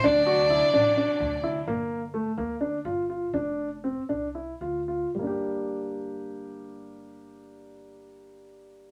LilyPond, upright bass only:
\new Staff \with { instrumentName = "Upright bass" } { \clef bass \time 7/8 \key g \dorian \tempo 4 = 117 d,4. a,,8 r8 d,4 | g,,4. d,4 g,,4 | f,,4. c,4 d,4 | g,,2.~ g,,8~ |
g,,2.~ g,,8 | }